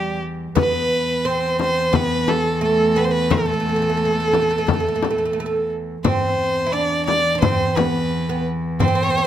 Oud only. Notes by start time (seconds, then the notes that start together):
Already playing: G3
0.55 B3
1.25 C4
1.93 B3
2.61 A3
2.96 B3
3.30 A3
3.38 A3
3.46 A3
3.54 A3
3.60 A3
3.69 A3
3.76 A3
3.82 A3
3.90 A3
3.97 A3
4.05 A3
4.13 A3
4.20 A3
4.28 A3
4.35 A3
4.42 A3
4.51 A3
4.58 A3
4.67 A3
4.73 A3
4.80 A3
4.88 A3
4.96 A3
5.04 A3
5.11 A3
5.18 A3
5.25 A3
5.33 A3
5.40 A3
5.46 A3
6.05 C4
6.66 E4
6.73 D4
7.35 D4
7.42 C4
7.77 B3
8.29 B3
8.80 C4
8.88 C4
8.95 C4
9.03 C4
9.10 C4
9.18 C4